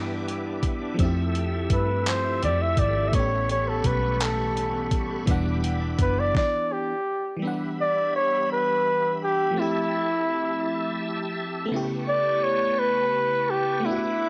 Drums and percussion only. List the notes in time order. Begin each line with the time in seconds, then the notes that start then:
0.28 closed hi-hat
0.63 kick, closed hi-hat
0.99 kick, closed hi-hat
1.35 closed hi-hat
1.70 kick, closed hi-hat
2.06 clap, closed hi-hat
2.42 closed hi-hat
2.77 kick, closed hi-hat
3.13 kick, closed hi-hat
3.49 closed hi-hat
3.84 kick, closed hi-hat
4.20 clap, closed hi-hat
4.57 closed hi-hat
4.91 kick, closed hi-hat
5.27 kick, closed hi-hat
5.64 closed hi-hat
5.99 kick, closed hi-hat
6.35 kick, snare